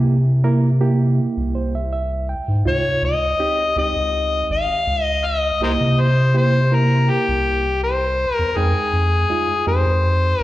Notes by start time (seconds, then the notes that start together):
Already playing: C3 A#3 E4 G4
0.44 A#3 E4 A#4
0.81 A#3 E4 G4
1.37 C2
1.55 C5
1.75 E5
1.93 E5
2.29 G5
2.48 G#2
2.65 C#2 C3 D#4 F4 C#5
3.02 C#2 D#5
3.39 C4 D#4 G4
3.76 C#2 C4 D#4 G4 D#5
3.96 C#2
4.50 G#1 F5
4.87 C#2
5.04 D#5
5.25 D#5
5.60 C2 A#3 E4 G4 A#4 C5 D#5
5.81 C3
6.00 C5
6.34 A#3 E4 G4 C5
6.72 A#3 E4 A#4
7.10 G4
7.29 C2
7.84 C5
8.35 A#4
8.39 E2
8.56 F2 G#3 D#4 G#4 G5
8.93 F2
9.30 G#3 D#4 F4
9.67 F2 G#3 D#4 G4 C5
9.87 F2
10.41 A#4